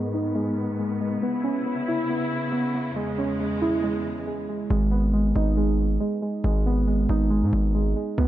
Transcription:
Already playing: G#2 D#3 G#3 B3
0.14 D#4
0.35 G#3
0.79 G#3
1.01 G#3
1.22 C#3 B3 E4
1.44 C#4
1.66 B3
1.88 E4
2.09 B3
2.52 B3
2.74 B3
2.96 E2 G#3
3.18 C#4
3.40 G#3
3.61 E4
3.83 G#3
4.27 G#3
4.49 G#3
4.70 G#1 G#3
4.91 B3
5.13 G#3
5.35 G#1 D#4
5.57 G#3
6.00 G#3
6.22 G#3
6.44 G#1 G#3
6.66 B3
6.87 G#3
7.09 G#1 D#4
7.30 G#3
7.43 G#2
7.53 G#1
7.75 G#3
7.96 G#3
8.18 C#2 B3

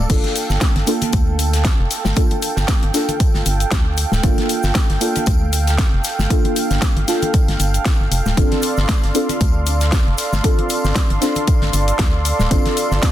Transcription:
Already playing: A4
0.09 G1 A#3 D4 F4 A4 F5 G5, kick, closed hi-hat, crash, tambourine, cabasa
0.24 snare, closed hi-hat, low conga
0.36 open hi-hat, tambourine, cabasa
0.50 G1, snare, cabasa
0.61 kick, snare, closed hi-hat, tambourine, high conga, cabasa
0.76 G1, snare, closed hi-hat, low conga
0.87 A#3 D4 F4 A4, open hi-hat, tambourine, cabasa
1.02 closed hi-hat, low conga, cabasa
1.13 D2, kick, closed hi-hat, tambourine, cabasa
1.28 high conga
1.39 open hi-hat, tambourine, cabasa
1.53 snare, closed hi-hat, cabasa
1.65 kick, cross-stick, snare, closed hi-hat, tambourine, cabasa
1.79 F1
1.90 snare, open hi-hat, tambourine, cabasa
2.05 G1, snare, high conga, cabasa
2.16 A#3 D4 F4 A4, kick, closed hi-hat, tambourine, cabasa
2.31 closed hi-hat, low conga
2.42 open hi-hat, tambourine, cabasa
2.56 G1, snare, cabasa
2.68 kick, snare, closed hi-hat, tambourine, high conga, cabasa
2.82 G1, closed hi-hat, low conga
2.93 A#3 D4 F4 A4, snare, open hi-hat, tambourine, cabasa
3.09 closed hi-hat, low conga, cabasa
3.20 kick, closed hi-hat, tambourine, cabasa
3.34 G1, snare, high conga
3.46 G1, open hi-hat, tambourine, cabasa
3.60 closed hi-hat, cabasa
3.71 D2, kick, cross-stick, snare, closed hi-hat, tambourine, cabasa
3.97 open hi-hat, tambourine, cabasa
4.12 D1, snare, high conga, cabasa
4.23 G1 A#3 D4 F4 A4, kick, closed hi-hat, tambourine, cabasa
4.38 snare, closed hi-hat, low conga
4.49 open hi-hat, tambourine, cabasa
4.63 G1, snare, cabasa
4.75 kick, snare, closed hi-hat, tambourine, high conga, cabasa
4.90 G1, snare, closed hi-hat, low conga
5.00 A#3 D4 F4 A4, open hi-hat, tambourine, cabasa
5.16 closed hi-hat, low conga, cabasa
5.26 D2, kick, closed hi-hat, tambourine, cabasa
5.41 high conga
5.53 open hi-hat, tambourine, cabasa
5.67 snare, closed hi-hat, cabasa
5.78 kick, cross-stick, snare, closed hi-hat, tambourine, cabasa
5.93 F1
6.04 snare, open hi-hat, tambourine, cabasa
6.19 G1, snare, high conga, cabasa
6.30 A#3 D4 F4 A4, kick, closed hi-hat, tambourine, cabasa
6.45 closed hi-hat, low conga
6.56 open hi-hat, tambourine, cabasa
6.71 G1, snare, closed hi-hat, cabasa
6.82 kick, snare, closed hi-hat, tambourine, high conga, cabasa
6.97 G1, closed hi-hat, low conga
7.07 A#3 D4 F4 A4, snare, open hi-hat, tambourine, cabasa
7.22 closed hi-hat, low conga, cabasa
7.34 kick, closed hi-hat, tambourine, cabasa
7.48 G1, snare, closed hi-hat, high conga
7.59 G1, open hi-hat, tambourine, cabasa
7.74 closed hi-hat, cabasa
7.85 kick, cross-stick, snare, closed hi-hat, tambourine, cabasa
8.00 G1
8.11 F1, open hi-hat, tambourine, cabasa
8.26 D1, snare, high conga, cabasa
8.37 G1 C4 D4 F4 A4 D5 C6, kick, closed hi-hat, tambourine, cabasa
8.51 snare, closed hi-hat, low conga
8.62 open hi-hat, tambourine, cabasa
8.77 G1, snare, cabasa
8.89 kick, snare, closed hi-hat, tambourine, high conga, cabasa
9.03 G1, snare, closed hi-hat, low conga
9.14 C4 D4 F4 A4, open hi-hat, tambourine, cabasa
9.29 closed hi-hat, low conga, cabasa
9.41 D2, kick, closed hi-hat, tambourine, cabasa
9.55 high conga
9.66 open hi-hat, tambourine, cabasa
9.81 snare, closed hi-hat, cabasa
9.92 kick, cross-stick, snare, closed hi-hat, tambourine, cabasa
9.94 snare
10.07 F1
10.18 snare, open hi-hat, tambourine, cabasa
10.33 G1, snare, high conga, cabasa
10.43 C4 D4 F4 A4, kick, closed hi-hat, tambourine, cabasa
10.58 closed hi-hat, low conga
10.70 open hi-hat, tambourine, cabasa
10.85 G1, snare, cabasa
10.95 kick, snare, closed hi-hat, tambourine, high conga, cabasa
11.10 G1, closed hi-hat, low conga
11.21 C4 D4 F4 A4, snare, open hi-hat, tambourine, cabasa
11.36 closed hi-hat, low conga, cabasa
11.48 kick, closed hi-hat, tambourine, cabasa
11.61 G1, snare, high conga
11.73 G1, open hi-hat, tambourine, cabasa
11.88 closed hi-hat, cabasa
11.98 D2, kick, cross-stick, snare, closed hi-hat, tambourine, cabasa
12.25 open hi-hat, tambourine, cabasa
12.39 D1, snare, high conga, cabasa
12.50 G1 C4 D4 F4 A4, kick, closed hi-hat, tambourine, cabasa
12.65 snare, closed hi-hat, low conga
12.77 open hi-hat, tambourine, cabasa
12.92 G1, snare, cabasa
13.02 kick, snare, closed hi-hat, tambourine, high conga, cabasa

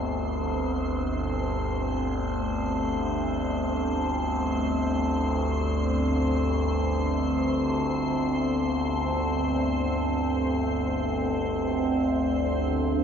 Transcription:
Already playing: G1 D2 C4 C5
12.69 G1 D2 C4 C5

